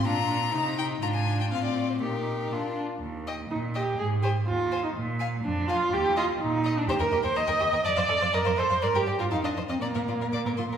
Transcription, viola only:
\new Staff \with { instrumentName = "Viola" } { \time 2/4 \key ees \major \tempo 4 = 124 d'8 d'8 ees'8 ees'8 | d'4 c'4 | ees'4 d'8 r8 | r4 ees'8 g'8 |
aes'8 g'8 f'8. ees'16 | r4 d'8 f'8 | g'8 f'8 ees'8. d'16 | \key bes \major g'16 bes'8 c''16 ees''4 |
d''4 bes'8 c''8 | bes'16 g'8 f'16 ees'16 d'8 c'16 | bes4. r8 | }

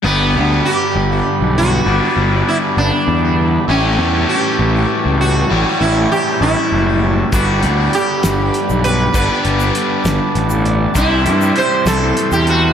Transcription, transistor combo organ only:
<<
  \new Staff \with { instrumentName = "Transistor combo organ" } { \time 6/8 \key g \lydian \tempo 4. = 66 << { b''2.~ | b''2. | a''2.~ | a''2. |
b''2. | a''2. | c'''2. | } \\ { <b' d''>2.~ | <b' d''>2. | <cis'' e''>2.~ | <cis'' e''>2. |
<b' d''>2.~ | <b' d''>2. | <c'' e''>2. | } >> }
  \new Staff \with { instrumentName = "Transistor combo organ" } { \clef bass \time 6/8 \key g \lydian g2.~ | g2.~ | g2.~ | g2. |
g2.~ | g2.~ | g2. | }
>>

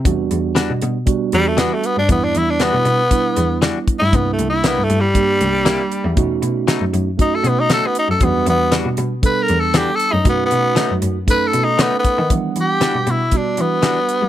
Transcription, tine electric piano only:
\new Staff \with { instrumentName = "Tine electric piano" } { \time 4/4 \key e \dorian \tempo 4 = 118 <g b d' fis'>2 <g b d' fis'>2 | <g b d' e'>2 <g b d' e'>2 | <g bes d' e'>2 <g bes d' g'>2 | <a cis' dis' fis'>2 <a cis' dis' fis'>2 |
<g b d' fis'>2 <g b d' a'>2 | <a cis' dis' fis'>2 <a cis' dis' a'>2 | <g b d' fis''>2 <g b d' fis'>2 | }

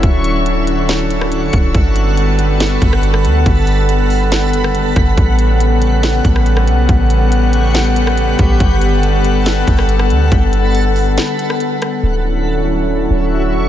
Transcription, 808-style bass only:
\new Staff \with { instrumentName = "808-style bass" } { \clef bass \time 4/4 \key g \lydian \tempo 4 = 140 d,,2.~ d,,8 d,,8 | g,,2~ g,,8 g,,4 d,8 | g,,2~ g,,8 fis,,4 g,,8 | a,,2~ a,,8 a,,4 b,,8 |
a,,2.~ a,,8 a,,8 | g,,2~ g,,8 g,,4 d,8 | g,,2 r2 | d,,2~ d,,8 d,,4 e,,8 | }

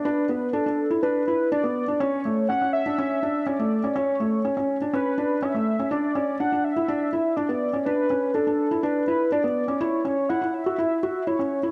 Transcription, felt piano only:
\new Staff \with { instrumentName = "Felt piano" } { \time 4/4 \key a \mixolydian \tempo 4 = 123 d'8 b8 d'16 d'8 e'16 d'8 e'8 d'16 b8 d'16 | cis'8 a8 cis'16 cis'8 d'16 cis'8 d'8 cis'16 a8 cis'16 | cis'8 a8 cis'16 cis'8 d'16 cis'8 d'8 cis'16 a8 cis'16 | d'8 cis'8 d'16 d'8 e'16 d'8 e'8 d'16 b8 cis'16 |
d'8 cis'8 d'16 d'8 e'16 d'8 e'8 d'16 b8 cis'16 | e'8 cis'8 e'16 e'8 fis'16 e'8 fis'8 e'16 cis'8 e'16 | }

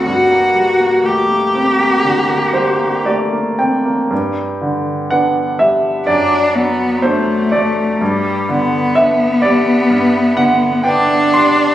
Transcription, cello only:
\new Staff \with { instrumentName = "Cello" } { \time 4/4 \key g \minor \tempo 4 = 62 fis'4 g'2 r4 | \key g \major r2 d'8 b8 a4 | g8 b2~ b8 d'4 | }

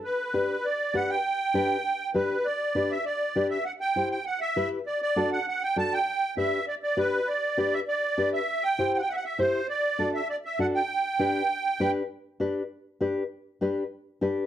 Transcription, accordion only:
\new Staff \with { instrumentName = "Accordion" } { \time 4/4 \key g \major \tempo 4 = 199 b'2 d''4 fis''8 g''8~ | g''2. b'4 | d''4. e''8 d''4. e''8 | fis''8 g''4 g''8 fis''8 e''4 r8 |
d''8 d''4 fis''8 fis''8 g''8 a''8 g''8~ | g''4 e''4 d''8 d''8 b'4 | d''4. e''8 d''4. e''8~ | e''8 g''4 g''32 fis''32 g''16 fis''32 e''32 fis''16 e''8 c''4 |
d''4. e''8 d''8 e''8 fis''8 g''8~ | g''2.~ g''8 r8 | r1 | r1 | }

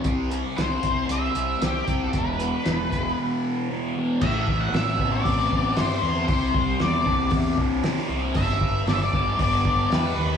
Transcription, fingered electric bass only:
\new Staff \with { instrumentName = "Fingered electric bass" } { \clef bass \time 4/4 \key a \minor \tempo 4 = 116 c,4 c,8 c,8 c,8 c,8 c,8 c,8 | e,,4 e,,8 e,,8 r2 | a,,4 a,,8 a,,8 a,,4 g,8 e,8 | c,8 c,8 e,8 c,8 e,8 c,8 c8 c,8 |
g,,4 g,,8 g,,8 g,,4 e,8 dis,8 | }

